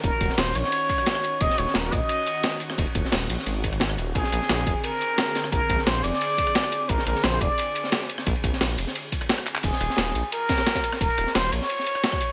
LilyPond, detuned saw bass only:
\new Staff \with { instrumentName = "Detuned saw bass" } { \clef bass \time 4/4 \key ees \dorian \tempo 4 = 175 ees,,8 ees,,8 ees,,8 bes,,8 r2 | ees,,8 ees,,8 ees,,8 bes,,8 r2 | ees,,8 ees,,8 ees,,8 bes,,8 aes,,4. ees,,8 | bes,,8 bes,,8 bes,,8 f,,8 r2 |
bes,,8 bes,,8 bes,,8 f,,8 r2 | bes,,8 bes,,8 bes,,8 f,,8 r2 | bes,,8 bes,,8 bes,,8 f,,8 r2 | ees,,8 ees,,8 ees,,8 bes,,8 r2 |
ees,,8 ees,,8 ees,,8 bes,,8 r2 | }